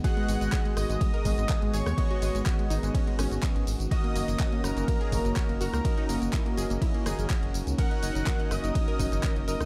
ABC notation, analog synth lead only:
X:1
M:4/4
L:1/8
Q:1/4=124
K:G#m
V:1 name="Analog synth lead"
f3 d4 c- | c2 z6 | d3 A4 A- | A2 z6 |
f3 d4 d |]